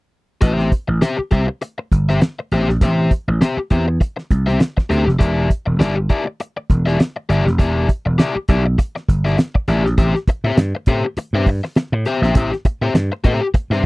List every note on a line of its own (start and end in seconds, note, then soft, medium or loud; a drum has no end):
0.41 0.69 A1 medium
0.41 0.53 F#4 medium
0.41 0.54 B4 medium
0.41 0.54 D#5 medium
0.41 kick loud
0.41 closed hi-hat loud
0.53 0.69 G4 medium
0.53 0.70 C5 medium
0.53 0.70 E5 medium
0.59 snare soft
0.72 kick medium
0.72 closed hi-hat medium
0.88 1.00 A1 medium
0.88 muted overdriven electric guitar stroke soft
1.02 1.19 G4 medium
1.02 1.17 C5 medium
1.02 1.17 E5 medium
1.02 snare medium
1.02 closed hi-hat medium
1.18 muted overdriven electric guitar stroke soft
1.18 muted slap bass stroke soft
1.31 1.47 C2 medium
1.31 1.45 G4 medium
1.31 1.45 C5 medium
1.31 1.45 E5 medium
1.31 kick medium
1.31 closed hi-hat medium
1.48 muted overdriven electric guitar stroke medium
1.62 muted overdriven electric guitar stroke soft
1.62 closed hi-hat medium
1.78 muted overdriven electric guitar stroke soft
1.92 2.18 G1 medium
1.92 kick medium
1.92 closed hi-hat medium
2.09 2.20 G4 medium
2.09 2.21 C5 medium
2.09 2.21 E5 medium
2.09 snare soft
2.21 muted overdriven electric guitar stroke soft
2.21 snare medium
2.21 closed hi-hat medium
2.39 muted overdriven electric guitar stroke soft
2.52 2.67 A1 medium
2.52 2.69 G4 medium
2.52 2.69 C5 medium
2.52 2.68 E5 medium
2.52 closed hi-hat soft
2.68 2.80 A#1 medium
2.68 muted overdriven electric guitar stroke soft
2.68 snare soft
2.81 3.08 A1 medium
2.81 3.10 G4 medium
2.81 3.10 C5 medium
2.81 3.10 E5 medium
2.81 kick loud
2.81 closed hi-hat medium
3.11 kick medium
3.11 closed hi-hat medium
3.28 3.40 A1 medium
3.28 muted overdriven electric guitar stroke soft
3.41 3.58 G4 medium
3.41 3.58 C5 medium
3.41 3.57 E5 medium
3.41 snare loud
3.41 closed hi-hat medium
3.57 muted slap bass stroke soft
3.57 muted overdriven electric guitar stroke medium
3.70 3.98 E2 medium
3.70 3.84 G4 medium
3.70 3.84 C5 medium
3.70 3.85 E5 medium
3.70 kick medium
3.70 closed hi-hat medium
3.88 muted overdriven electric guitar stroke medium
4.01 muted overdriven electric guitar stroke soft
4.01 kick loud
4.01 closed hi-hat medium
4.16 muted overdriven electric guitar stroke soft
4.16 snare soft
4.31 4.57 C2 medium
4.31 kick medium
4.31 closed hi-hat medium
4.46 4.59 G4 medium
4.46 4.59 C5 medium
4.46 4.60 E5 medium
4.46 snare soft
4.60 muted overdriven electric guitar stroke soft
4.60 snare loud
4.60 closed hi-hat medium
4.77 muted overdriven electric guitar stroke soft
4.77 kick medium
4.77 snare soft
4.90 5.05 D2 medium
4.90 5.07 G4 loud
4.90 5.05 C5 loud
4.90 5.04 E5 loud
4.90 snare soft
4.90 closed hi-hat medium
5.06 5.19 F1 medium
5.06 muted overdriven electric guitar stroke soft
5.06 snare soft
5.19 5.47 E1 loud
5.19 5.47 G4 medium
5.19 5.48 D5 medium
5.19 5.48 E5 medium
5.19 kick loud
5.19 closed hi-hat loud
5.50 kick medium
5.50 closed hi-hat medium
5.66 5.79 E1 medium
5.66 muted overdriven electric guitar stroke soft
5.79 6.07 G1 medium
5.79 5.97 G4 medium
5.79 5.96 D5 medium
5.79 5.95 E5 medium
5.79 snare medium
5.79 closed hi-hat medium
5.96 muted overdriven electric guitar stroke soft
6.09 6.23 G4 medium
6.09 6.23 D5 medium
6.09 6.23 E5 medium
6.09 kick medium
6.09 closed hi-hat medium
6.26 muted overdriven electric guitar stroke soft
6.40 muted overdriven electric guitar stroke soft
6.40 closed hi-hat medium
6.57 muted overdriven electric guitar stroke soft
6.70 6.97 E1 medium
6.70 kick medium
6.70 closed hi-hat medium
6.86 6.99 G4 medium
6.86 6.99 D5 medium
6.86 6.99 E5 medium
6.86 snare soft
7.00 muted overdriven electric guitar stroke soft
7.00 snare medium
7.00 closed hi-hat medium
7.16 muted overdriven electric guitar stroke soft
7.29 7.44 G1 medium
7.29 7.46 G4 medium
7.29 7.46 D5 loud
7.29 7.45 E5 loud
7.29 closed hi-hat medium
7.46 7.59 F1 medium
7.46 muted overdriven electric guitar stroke soft
7.46 snare soft
7.59 7.86 E1 loud
7.59 7.87 G4 medium
7.59 7.87 D5 medium
7.59 7.87 E5 medium
7.59 kick loud
7.59 closed hi-hat loud
7.89 kick medium
7.89 closed hi-hat medium
8.06 8.18 E1 medium
8.06 muted overdriven electric guitar stroke soft
8.18 8.36 G4 medium
8.18 8.36 D5 medium
8.18 8.35 E5 medium
8.18 snare loud
8.18 closed hi-hat medium
8.36 muted slap bass stroke soft
8.36 muted overdriven electric guitar stroke soft
8.48 8.76 B1 medium
8.48 8.62 G4 medium
8.48 8.63 D5 medium
8.48 8.63 E5 medium
8.48 kick medium
8.48 closed hi-hat medium
8.66 muted overdriven electric guitar stroke medium
8.78 muted overdriven electric guitar stroke soft
8.78 kick loud
8.78 closed hi-hat medium
8.95 muted overdriven electric guitar stroke soft
8.95 snare soft
9.08 9.35 G1 medium
9.08 kick medium
9.08 closed hi-hat medium
9.25 9.37 G4 medium
9.25 9.37 D5 medium
9.25 9.38 E5 medium
9.25 snare soft
9.38 muted overdriven electric guitar stroke soft
9.38 snare loud
9.38 closed hi-hat medium
9.55 muted overdriven electric guitar stroke soft
9.55 kick medium
9.68 9.85 A1 medium
9.68 9.85 G4 medium
9.68 9.84 D5 medium
9.68 9.84 E5 medium
9.68 snare soft
9.68 closed hi-hat medium
9.85 9.97 A#1 medium
9.85 muted overdriven electric guitar stroke soft
9.85 snare soft
9.98 10.13 A1 loud
9.98 10.15 G4 medium
9.98 10.15 C5 medium
9.98 10.14 E5 medium
9.98 kick loud
9.98 closed hi-hat loud
10.15 muted overdriven electric guitar stroke soft
10.15 snare soft
10.28 muted slap bass stroke soft
10.28 muted overdriven electric guitar stroke soft
10.28 kick medium
10.28 closed hi-hat medium
10.44 10.56 A2 medium
10.44 10.56 G4 medium
10.44 10.55 C5 medium
10.44 10.55 E5 medium
10.57 10.72 G2 medium
10.57 muted overdriven electric guitar stroke soft
10.57 snare loud
10.57 closed hi-hat medium
10.75 muted overdriven electric guitar stroke soft
10.86 11.02 A2 loud
10.86 11.04 G4 medium
10.86 11.05 C5 medium
10.86 11.04 E5 medium
10.86 kick medium
10.86 closed hi-hat medium
11.05 muted overdriven electric guitar stroke soft
11.17 muted slap bass stroke soft
11.17 muted overdriven electric guitar stroke soft
11.17 closed hi-hat medium
11.33 11.60 G2 medium
11.33 11.48 G4 medium
11.33 11.48 C5 medium
11.33 11.47 E5 medium
11.46 muted overdriven electric guitar stroke soft
11.46 kick medium
11.46 open hi-hat medium
11.64 muted overdriven electric guitar stroke medium
11.64 snare soft
11.76 muted overdriven electric guitar stroke soft
11.76 snare loud
11.76 closed hi-hat medium
11.92 12.04 A2 loud
11.92 muted overdriven electric guitar stroke soft
12.05 12.19 G4 medium
12.05 12.20 C5 medium
12.05 12.20 E5 medium
12.05 closed hi-hat medium
12.22 12.34 A#1 medium
12.22 12.34 G4 soft
12.22 12.33 C5 medium
12.22 12.33 E5 medium
12.22 snare soft
12.35 12.50 A1 loud
12.35 12.52 G4 medium
12.35 12.51 C5 medium
12.35 12.51 E5 loud
12.35 kick loud
12.35 closed hi-hat loud
12.52 muted overdriven electric guitar stroke soft
12.52 snare soft
12.65 muted slap bass stroke medium
12.65 muted overdriven electric guitar stroke soft
12.65 kick medium
12.65 closed hi-hat medium
12.81 12.93 A2 medium
12.81 12.93 G4 medium
12.81 12.93 C5 medium
12.81 12.92 E5 medium
12.94 13.09 G2 medium
12.94 muted overdriven electric guitar stroke soft
12.94 snare loud
12.94 closed hi-hat medium
13.12 muted overdriven electric guitar stroke medium
13.24 13.39 A2 loud
13.24 13.45 G4 medium
13.24 13.41 C5 loud
13.24 13.40 E5 loud
13.24 kick medium
13.24 closed hi-hat medium
13.42 muted overdriven electric guitar stroke medium
13.54 muted slap bass stroke medium
13.54 muted overdriven electric guitar stroke soft
13.54 kick loud
13.54 closed hi-hat medium
13.70 13.86 G2 loud
13.70 13.83 G4 medium
13.70 13.84 C5 medium
13.70 13.84 E5 medium
13.70 snare soft